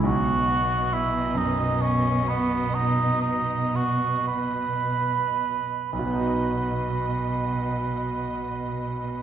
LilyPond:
<<
  \new Staff \with { instrumentName = "Violin section" } { \time 6/8 \key b \major \tempo 4. = 38 dis''2.~ | dis''2~ dis''8. r16 | dis''2. | }
  \new Staff \with { instrumentName = "Cor anglais" } { \time 6/8 \key b \major fis'4 e'8 dis'8 cis'8 b8 | dis'8 dis'8 fis'8 b'4. | b'2. | }
  \new Staff \with { instrumentName = "Grand piano" } { \clef bass \time 6/8 \key b \major b,,4. fis,4.~ | fis,2. | <b,, b, b dis' fis' dis''>2. | }
  \new Staff \with { instrumentName = "Cello section" } { \clef bass \time 6/8 \key b \major b,2.~ | b,2~ b,8. r16 | b,2. | }
>>